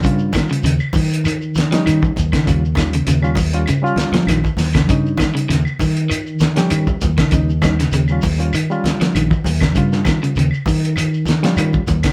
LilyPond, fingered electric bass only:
\new Staff \with { instrumentName = "Fingered electric bass" } { \clef bass \time 4/4 \key ees \mixolydian \tempo 4 = 99 g,8 r8 ees,16 r16 ees4. ees16 r16 ees,16 ees16 | ees,4 ees,8 ees,8 r4 bes,,16 r16 ees,8 | g,8 r8 ees,16 r16 ees4. ees16 r16 ees,16 ees16 | ees,4 ees,8 ees,8 r4 bes,,16 r16 ees,8 |
g,8 r8 ees,16 r16 ees4. ees16 r16 ees,16 ees16 | }